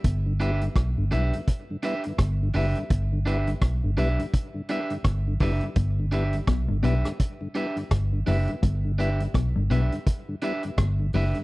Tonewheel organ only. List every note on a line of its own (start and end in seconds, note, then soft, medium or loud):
0.26 0.33 G2 medium
0.26 0.33 D3 medium
0.41 0.51 G3 medium
0.41 0.51 B3 medium
0.41 0.51 E4 medium
0.62 0.69 G2 soft
0.62 0.69 D3 medium
0.98 1.05 G2 medium
0.98 1.05 D3 medium
1.13 1.23 G3 medium
1.13 1.23 B3 medium
1.13 1.23 E4 medium
1.35 1.41 G2 medium
1.35 1.41 D3 medium
1.70 1.77 G2 medium
1.70 1.77 D3 medium
1.85 1.95 G3 medium
1.85 1.95 B3 medium
1.85 1.95 E4 medium
2.06 2.13 G2 medium
2.06 2.13 D3 medium
2.42 2.49 G2 medium
2.42 2.49 D3 medium
2.56 2.66 G3 medium
2.56 2.66 B3 medium
2.56 2.67 E4 medium
2.77 2.84 G2 medium
2.77 2.84 D3 medium
3.12 3.19 G2 medium
3.12 3.19 D3 medium
3.27 3.37 G3 medium
3.27 3.37 B3 medium
3.27 3.38 E4 medium
3.48 3.55 G2 medium
3.48 3.55 D3 medium
3.84 3.91 G2 medium
3.84 3.91 D3 medium
3.98 4.08 G3 medium
3.98 4.08 B3 medium
3.98 4.09 E4 medium
4.19 4.26 G2 medium
4.19 4.27 D3 medium
4.54 4.62 G2 medium
4.54 4.62 D3 medium
4.69 4.80 G3 medium
4.69 4.80 B3 medium
4.69 4.80 E4 medium
4.90 4.98 G2 medium
4.90 4.98 D3 medium
5.27 5.34 G2 medium
5.27 5.34 D3 medium
5.42 5.52 G3 medium
5.42 5.52 B3 medium
5.42 5.52 E4 medium
5.63 5.70 G2 medium
5.63 5.70 D3 medium
5.99 6.06 G2 medium
5.99 6.06 D3 medium
6.14 6.24 G3 medium
6.14 6.24 B3 medium
6.14 6.24 E4 medium
6.34 6.41 G2 medium
6.34 6.41 D3 medium
6.71 6.77 G2 medium
6.71 6.77 D3 medium
6.83 6.94 G3 medium
6.83 6.95 B3 medium
6.83 6.95 E4 medium
7.06 7.13 G2 medium
7.06 7.13 D3 medium
7.41 7.48 G2 medium
7.41 7.48 D3 medium
7.55 7.66 G3 medium
7.55 7.66 B3 medium
7.55 7.66 E4 medium
7.76 7.84 G2 medium
7.76 7.84 D3 medium
8.13 8.20 G2 medium
8.13 8.20 D3 medium
8.26 8.37 G3 medium
8.26 8.38 B3 medium
8.26 8.38 E4 medium
8.49 8.56 G2 medium
8.49 8.56 D3 medium
8.85 8.92 G2 medium
8.85 8.92 D3 medium
8.99 9.10 G3 medium
8.99 9.09 B3 medium
8.99 9.10 E4 medium
9.21 9.28 G2 medium
9.21 9.28 D3 medium
9.57 9.64 G2 medium
9.57 9.64 D3 medium
9.71 9.81 G3 medium
9.71 9.81 B3 medium
9.71 9.82 E4 medium
9.93 9.99 G2 medium
9.93 9.99 D3 medium
10.29 10.35 G2 medium
10.29 10.35 D3 medium
10.43 10.53 G3 medium
10.43 10.53 B3 medium
10.43 10.53 E4 medium
10.64 10.71 G2 medium
10.64 10.71 D3 medium
10.99 11.07 G2 medium
10.99 11.07 D3 medium
11.14 11.25 G3 medium
11.14 11.25 B3 medium
11.14 11.25 E4 medium
11.35 11.42 G2 medium
11.35 11.43 D3 medium